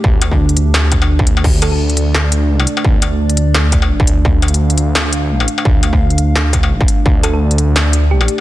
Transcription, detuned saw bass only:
X:1
M:4/4
L:1/8
Q:"Swing 16ths" 1/4=171
K:Dm
V:1 name="Detuned saw bass" clef=bass
D,,4 D,,4 | D,,4 D,,3 z | D,,4 D,,3 D,, | D,,4 D,,3 z |
D,,4 D,,3 z | D,,4 D,,3 z |]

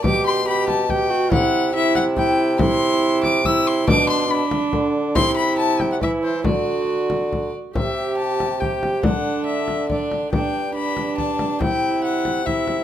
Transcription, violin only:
X:1
M:3/4
L:1/16
Q:1/4=141
K:Clyd
V:1 name="Violin"
d'2 c'2 b2 a2 g4 | f4 e2 f2 g4 | c'6 d'2 e'2 c'2 | d'2 c'2 b4 z4 |
c'2 b2 a2 g f e2 c2 | d8- d2 z2 | e4 a4 g4 | f4 e4 d4 |
g4 b4 a4 | g4 f4 e4 |]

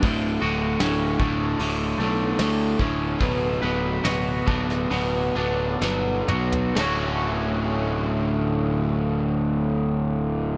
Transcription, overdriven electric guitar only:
X:1
M:4/4
L:1/8
Q:1/4=68
K:D
V:1 name="Overdriven electric guitar" clef=bass
[D,,A,,D,] [D,,A,,D,] [D,,A,,D,] [D,,A,,D,] [D,,A,,D,] [D,,A,,D,] [D,,A,,D,] [D,,A,,D,] | [B,,F,B,] [B,,F,B,] [B,,F,B,] [B,,F,B,] [B,,F,B,] [B,,F,B,] [B,,F,B,] [B,,F,B,] | [D,,A,,D,A,CF]8 |]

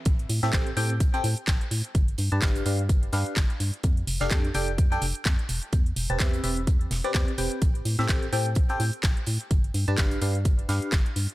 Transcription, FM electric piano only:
X:1
M:4/4
L:1/16
Q:"Swing 16ths" 1/4=127
K:Am
V:1 name="FM electric piano"
z3 [CGAe] [CGAg] z [CGAg] z2 [CGAg] z6 | z3 [DGBa] [DGBf]2 [DGBf] z3 [DGBf]2 z4 | z3 [DGAf] [DGAg] z [DGAg] z2 [DGAg] z6 | z3 [CGBa] [CGBe]2 [CGBe] z4 [CGBd] [CGBd] z [CGBg]2 |
z3 [CGAe] [CGAg] z [CGAg] z2 [CGAg] z6 | z3 [DGBa] [DGBf]2 [DGBf] z3 [DGBf]2 z4 |]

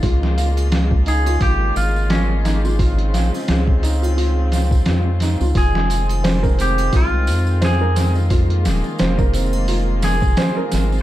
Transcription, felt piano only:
X:1
M:4/4
L:1/16
Q:"Swing 16ths" 1/4=87
K:Fm
V:1 name="Felt piano"
F2 f z3 E F F2 f z3 E F | F2 f z3 E F F2 f z3 E F | F z3 c B C z F z3 c B C z | F z3 c B C z F z3 c B C z |]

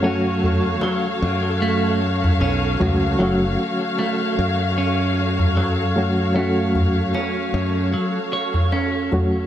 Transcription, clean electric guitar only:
X:1
M:4/4
L:1/8
Q:"Swing 16ths" 1/4=76
K:F#m
V:1 name="Clean electric guitar"
C2 F, z A, z C2 | F, z A, z C2 F, z | A, z C2 F, c C z |]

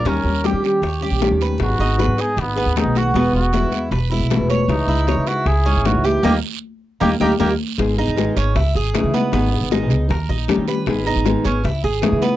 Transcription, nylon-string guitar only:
X:1
M:4/4
L:1/8
Q:1/4=155
K:D#phr
V:1 name="Nylon-string guitar"
[D,=G,C=G] [G,CG] [D,G,CG] [G,CG] z [G,CG] [D,G,CG]2 | [D,F,B,DG] [B,DG] [D,F,B,DG] [B,DG] z [B,DG] [D,F,B,DG]2 | [B,,E,G,B,F] [G,B,F] [B,,E,G,B,F] [G,B,F] z [G,B,F] [B,,E,G,B,F]2 | [C,E,G,DE] [G,DE] [C,E,G,DE] [G,DE] z [G,DE] [C,E,G,DE]2 |
[=G,A,D] z3 [G,A,D] [G,A,D] [G,A,D] z | [K:G#m] [D,G,B,DG] [B,DG] [D,G,B,DG] [B,DG] z2 [C,E,G,DE] [G,DE] | [D,G,B,DG] [B,DG] [D,G,B,DG] [B,DG] z2 [D,=G,C=G] [G,CG] | [D,G,B,DG] [B,DG] [D,G,B,DG] [B,DG] z2 [C,E,G,DE] [G,DE] |]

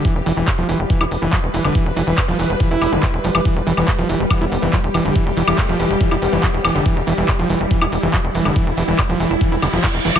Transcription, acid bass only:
X:1
M:4/4
L:1/16
Q:1/4=141
K:Ephr
V:1 name="Acid bass" clef=bass
E, z E, E, z F, E, z E, E z E, z2 E, D, | E, z E, E, z F, E, z E, E2 D, F, z F, E, | E, z E, E, z F, E, z E, E z E, F, z E, D, | E, z E, E, z F, E, z E, E z E, F, z E, D, |
E, z E, E, z F, E, z E, E z E, z2 E, D, | E, z E, E, z F, E, z E, E D, F, z2 E, E, |]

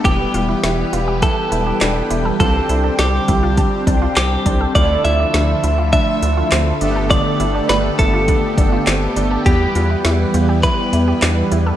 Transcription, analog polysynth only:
X:1
M:4/4
L:1/8
Q:1/4=102
K:Ephr
V:1 name="Analog polysynth"
[G,B,EGB]8 | [G,CDGc]8 | [A,DEFA]6- [A,DEFA] [A,B,DGA]- | [A,B,DGA]8 |
[G,B,EGB]8 |]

